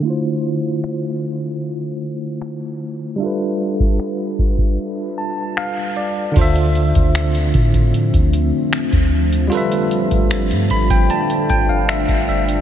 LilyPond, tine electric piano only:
\new Staff \with { instrumentName = "Tine electric piano" } { \time 4/4 \key d \dorian \tempo 4 = 76 << { r1 | r2 r8 a''8 f''8 d''8 | r1 | r4. b''16 g''16 a''8 g''16 f''16 e''8 e''8 | } \\ { <d a e' f' c''>1 | <g d' f' a' b' e''>1 | <d d' f' c'' e''>1 | <g f' a' b' e''>1 | } >> }